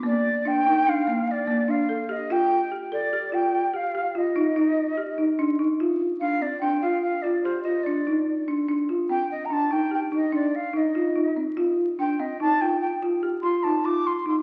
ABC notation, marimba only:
X:1
M:7/4
L:1/8
Q:1/4=145
K:Cdor
V:1 name="Marimba"
B,2 D E D B,2 B, D A G F2 G | A G F2 G G F E E2 G E D E | F2 D C D F2 F G F D E2 D | D F C2 D E G E D2 E F E C |
F2 D C E F2 F G F E F2 E |]